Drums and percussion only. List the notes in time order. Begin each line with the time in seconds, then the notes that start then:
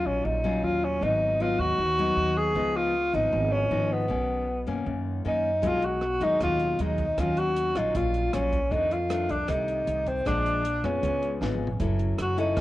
5.63 kick, closed hi-hat
5.82 closed hi-hat
6.01 cross-stick, closed hi-hat
6.21 closed hi-hat
6.40 kick, cross-stick, closed hi-hat
6.59 closed hi-hat
6.79 closed hi-hat
6.98 kick, closed hi-hat
7.18 kick, cross-stick, closed hi-hat
7.37 closed hi-hat
7.56 closed hi-hat
7.76 cross-stick, closed hi-hat
7.95 kick, closed hi-hat
8.14 closed hi-hat
8.33 cross-stick, closed hi-hat
8.53 kick, closed hi-hat
8.72 kick, closed hi-hat
8.91 closed hi-hat
9.10 cross-stick, closed hi-hat
9.29 closed hi-hat
9.48 kick, cross-stick, closed hi-hat
9.68 closed hi-hat
9.87 closed hi-hat
10.07 kick, closed hi-hat
10.26 kick, cross-stick, closed hi-hat
10.46 closed hi-hat
10.65 closed hi-hat
10.84 cross-stick, closed hi-hat
11.03 kick, closed hi-hat
11.23 closed hi-hat
11.42 snare
11.54 mid tom
11.67 floor tom
11.80 kick, closed hi-hat
11.99 closed hi-hat
12.19 cross-stick, closed hi-hat
12.38 closed hi-hat
12.57 kick, cross-stick, closed hi-hat